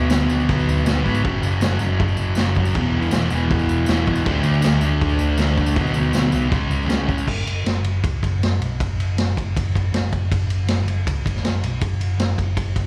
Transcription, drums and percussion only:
0.10 snare loud
0.10 tambourine loud
0.10 crash medium
0.29 tambourine medium
0.40 tambourine soft
0.49 kick loud
0.49 tambourine soft
0.49 crash medium
0.59 tambourine soft
0.69 tambourine medium
0.78 tambourine soft
0.86 snare loud
0.86 tambourine loud
0.86 crash medium
1.06 kick medium
1.06 tambourine soft
1.15 tambourine medium
1.25 kick loud
1.25 crash medium
1.43 tambourine medium
1.52 tambourine soft
1.61 snare loud
1.61 tambourine loud
1.61 crash medium
1.71 tambourine soft
1.79 tambourine medium
2.00 kick loud
2.00 crash medium
2.08 tambourine soft
2.17 tambourine medium
2.35 snare loud
2.35 tambourine loud
2.35 crash medium
2.45 tambourine soft
2.55 kick medium
2.55 tambourine soft
2.65 tambourine medium
2.75 kick loud
2.75 crash medium
3.02 tambourine soft
3.11 snare loud
3.11 tambourine loud
3.11 crash medium
3.21 tambourine soft
3.30 tambourine medium
3.50 kick loud
3.50 crash medium
3.59 tambourine soft
3.69 tambourine medium
3.86 snare loud
3.86 tambourine loud
3.86 crash medium
4.06 kick medium
4.06 tambourine soft
4.15 tambourine medium
4.26 kick loud
4.26 crash medium
4.43 tambourine medium
4.54 tambourine soft
4.62 snare loud
4.62 tambourine loud
4.62 crash medium
4.72 tambourine soft
4.81 tambourine medium
5.01 kick loud
5.01 crash medium
5.09 tambourine soft
5.19 tambourine medium
5.38 snare loud
5.38 tambourine loud
5.38 crash medium
5.48 tambourine soft
5.57 kick medium
5.57 tambourine soft
5.66 tambourine medium
5.76 kick loud
5.76 tambourine soft
5.76 crash medium
5.87 tambourine soft
5.94 tambourine medium
6.04 tambourine soft
6.13 snare loud
6.13 tambourine loud
6.13 crash medium
6.23 tambourine soft
6.32 tambourine medium
6.52 kick loud
6.52 tambourine soft
6.52 crash medium
6.71 tambourine medium
6.82 tambourine soft
6.90 snare loud
6.90 tambourine medium
6.90 crash medium
7.09 kick medium
7.09 tambourine soft
7.18 tambourine medium
7.28 kick loud
7.28 crash loud
7.47 ride medium
7.66 snare loud
7.66 ride loud
7.84 ride medium
8.04 kick loud
8.04 ride medium
8.23 kick medium
8.23 ride medium
8.43 snare loud
8.43 ride medium
8.62 ride medium
8.80 kick loud
8.80 ride medium
9.00 ride medium
9.18 snare loud
9.18 ride medium
9.37 kick medium
9.37 ride medium
9.56 kick loud
9.56 ride loud
9.75 kick medium
9.75 ride medium
9.94 snare loud
9.94 ride medium
10.12 kick medium
10.12 ride medium
10.32 kick loud
10.32 ride loud
10.50 ride medium
10.68 snare loud
10.68 ride loud
10.88 ride medium
11.07 kick loud
11.07 ride loud
11.26 kick medium
11.26 ride medium
11.36 snare soft
11.45 snare loud
11.45 ride medium
11.63 ride medium
11.81 kick loud
11.81 ride medium
12.01 ride medium
12.20 snare loud
12.20 ride medium
12.38 kick medium
12.38 ride medium
12.57 kick loud
12.57 ride medium
12.76 kick medium
12.76 ride medium

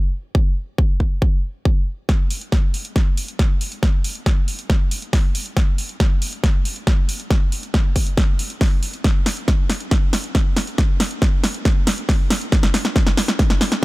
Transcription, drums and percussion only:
0.35 kick loud
0.78 kick loud
1.00 kick medium
1.22 kick loud
1.65 kick loud
2.09 kick loud
2.09 snare soft
2.09 closed hi-hat medium
2.31 open hi-hat loud
2.41 closed hi-hat medium
2.52 kick loud
2.52 snare soft
2.52 closed hi-hat medium
2.74 open hi-hat loud
2.85 closed hi-hat medium
2.96 kick loud
2.96 snare soft
2.96 closed hi-hat medium
3.17 open hi-hat loud
3.28 closed hi-hat medium
3.39 kick loud
3.39 snare soft
3.39 closed hi-hat medium
3.61 open hi-hat loud
3.72 closed hi-hat medium
3.83 kick loud
3.83 snare soft
3.83 closed hi-hat medium
4.04 open hi-hat loud
4.15 closed hi-hat medium
4.26 kick loud
4.26 snare medium
4.26 closed hi-hat medium
4.48 open hi-hat loud
4.59 closed hi-hat medium
4.70 kick loud
4.70 snare soft
4.70 closed hi-hat medium
4.91 open hi-hat loud
5.02 closed hi-hat medium
5.13 kick loud
5.13 snare medium
5.13 open hi-hat medium
5.35 open hi-hat loud
5.46 closed hi-hat medium
5.57 kick loud
5.57 snare medium
5.57 closed hi-hat medium
5.78 open hi-hat loud
5.89 closed hi-hat medium
6.00 kick loud
6.00 snare medium
6.00 closed hi-hat medium
6.22 open hi-hat loud
6.33 closed hi-hat medium
6.44 kick loud
6.44 snare medium
6.44 closed hi-hat medium
6.65 open hi-hat loud
6.76 closed hi-hat medium
6.87 kick loud
6.87 snare medium
6.87 closed hi-hat medium
7.09 open hi-hat loud
7.20 closed hi-hat medium
7.31 kick loud
7.31 snare medium
7.31 closed hi-hat medium
7.52 open hi-hat loud
7.63 closed hi-hat medium
7.74 kick loud
7.74 snare medium
7.74 closed hi-hat medium
7.96 kick medium
7.96 open hi-hat loud
8.07 closed hi-hat medium
8.17 kick loud
8.17 snare medium
8.17 closed hi-hat medium
8.39 open hi-hat loud
8.50 closed hi-hat medium
8.61 kick loud
8.61 snare medium
8.61 open hi-hat medium
8.83 open hi-hat loud
8.94 closed hi-hat medium
9.04 kick loud
9.04 snare medium
9.04 closed hi-hat medium
9.26 snare medium
9.26 open hi-hat loud
9.37 closed hi-hat medium
9.48 kick loud
9.48 snare medium
9.48 closed hi-hat medium
9.70 snare medium
9.70 open hi-hat loud
9.80 closed hi-hat medium
9.91 kick loud
9.91 snare medium
9.91 closed hi-hat medium
10.13 snare medium
10.13 open hi-hat loud
10.24 closed hi-hat medium
10.35 kick loud
10.35 snare medium
10.35 closed hi-hat medium
10.57 snare medium
10.57 open hi-hat loud
10.67 closed hi-hat medium
10.78 kick loud
10.78 snare medium
10.78 closed hi-hat medium
11.00 snare medium
11.00 open hi-hat loud
11.11 closed hi-hat medium
11.22 kick loud
11.22 snare medium
11.22 closed hi-hat medium
11.44 snare medium
11.44 open hi-hat loud
11.54 closed hi-hat medium
11.65 kick loud
11.65 snare medium
11.65 closed hi-hat medium
11.87 snare medium
11.87 open hi-hat loud
11.98 closed hi-hat medium
12.09 kick loud
12.09 snare medium
12.09 open hi-hat medium
12.30 snare medium
12.30 open hi-hat loud
12.41 closed hi-hat medium
12.52 kick loud
12.52 snare medium
12.52 closed hi-hat medium
12.63 snare medium
12.74 snare medium
12.74 open hi-hat loud
12.85 snare medium
12.85 closed hi-hat medium
12.96 kick loud
12.96 snare medium
12.96 closed hi-hat medium
13.07 snare medium
13.17 snare loud
13.17 open hi-hat loud
13.28 snare medium
13.28 closed hi-hat medium
13.39 kick loud
13.39 snare loud
13.39 closed hi-hat medium
13.50 snare medium
13.61 snare loud
13.61 open hi-hat loud
13.72 snare medium
13.72 closed hi-hat medium

